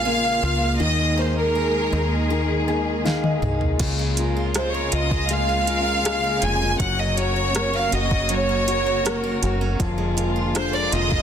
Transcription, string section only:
0.00 0.77 C#3 medium
0.00 0.77 G#3 medium
0.00 3.76 A#3 medium
0.00 0.77 F4 medium
0.79 3.77 D#3 medium
0.79 3.77 G#3 medium
0.79 3.77 G#4 medium
3.81 9.77 C#3 medium
3.81 6.78 G#3 medium
3.81 11.22 A#3 medium
3.81 6.78 F4 medium
6.79 9.77 F#3 medium
6.79 9.77 F#4 medium
9.81 11.22 D3 medium
9.81 11.22 G#3 medium
9.81 11.22 F4 medium

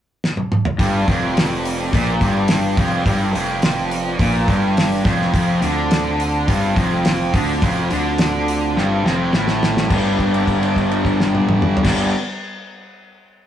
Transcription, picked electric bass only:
0.79 1.05 G1 medium
1.08 1.88 F1 medium
1.93 2.19 A#1 medium
2.21 2.73 G1 medium
2.77 3.04 F1 loud
3.06 3.32 G1 medium
3.34 4.15 F1 medium
4.19 4.46 A#1 medium
4.48 5.01 G1 medium
5.04 5.31 F1 medium
5.33 5.60 F1 medium
5.62 6.43 D2 loud
6.48 6.74 G1 medium
6.77 7.29 F1 medium
7.33 7.60 D2 loud
7.62 7.89 F1 medium
7.91 8.72 D2 medium
8.76 9.02 G1 medium
9.04 9.31 F1 medium
9.33 9.86 A1 medium
9.90 11.74 G1 medium
11.84 12.09 G1 medium

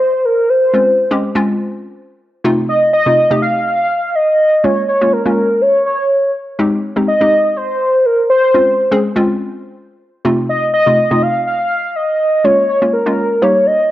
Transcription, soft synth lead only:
0.00 0.27 C5 loud
0.25 0.51 A#4 medium
0.49 1.23 C5 loud
2.69 2.92 D#5 loud
2.93 3.39 D#5 loud
3.42 3.65 F5 loud
3.66 4.17 F5 loud
4.15 4.65 D#5 loud
4.64 4.88 C#5 loud
4.88 5.14 C#5 medium
5.13 5.63 A#4 medium
5.61 5.85 C#5 medium
5.86 6.31 C#5 medium
7.08 7.58 D#5 loud
7.56 8.07 C5 loud
8.05 8.29 A#4 medium
8.30 8.99 C5 loud
10.49 10.72 D#5 loud
10.74 11.24 D#5 loud
11.23 11.46 F5 loud
11.47 11.97 F5 loud
11.96 12.46 D#5 loud
12.44 12.68 C#5 loud
12.69 12.80 C#5 medium
12.93 13.44 A#4 medium
13.42 13.68 C#5 medium
13.66 13.91 D#5 medium

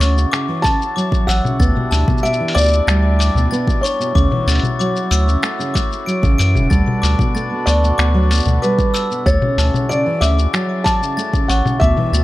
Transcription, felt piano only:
0.62 1.29 A5 loud
1.27 1.88 F#5 medium
2.23 2.53 E5 loud
2.55 3.87 D5 loud
3.81 4.42 C#5 medium
7.66 8.65 D5 medium
8.62 9.22 B4 medium
9.26 9.86 C#5 loud
9.89 10.19 D5 medium
10.21 10.87 E5 medium
10.84 11.51 A5 loud
11.48 11.82 F#5 medium
11.80 12.24 E5 loud

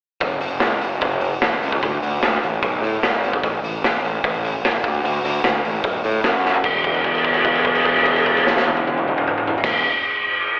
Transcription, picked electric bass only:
0.21 0.36 F#1 medium
0.43 0.57 F#1 medium
0.63 0.77 C#2 medium
0.83 0.97 F#1 medium
1.02 1.31 F#1 medium
1.42 1.57 E1 medium
1.63 1.77 C#2 medium
1.83 1.97 D2 medium
2.02 2.17 D2 medium
2.23 2.37 D2 medium
2.43 2.57 A1 medium
2.63 2.77 B1 medium
2.82 2.97 A2 medium
3.04 3.32 G#1 medium
3.43 3.58 A1 medium
3.62 3.77 A1 medium
3.83 3.97 E1 medium
4.03 4.18 A1 medium
4.24 4.52 A1 medium
4.63 4.78 F#1 medium
4.84 4.99 D2 medium
5.04 5.19 D2 medium
5.24 5.39 D2 medium
5.44 5.58 D2 medium
5.64 5.79 A1 medium
5.84 5.99 B1 medium
6.04 6.19 A2 medium
6.23 6.53 F#2 medium
6.64 9.54 E1 loud
9.64 9.81 E1 medium

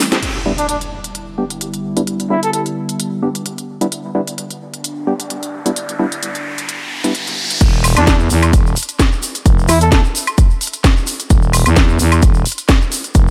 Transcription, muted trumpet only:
0.58 0.65 D4 medium
0.69 0.77 D4 medium
2.30 2.40 E4 medium
2.43 2.50 A4 medium
2.53 2.61 A4 medium
7.97 8.03 D4 loud
8.07 8.15 D4 medium
9.69 9.79 E4 loud
9.81 9.88 A4 medium
9.92 10.00 A4 medium

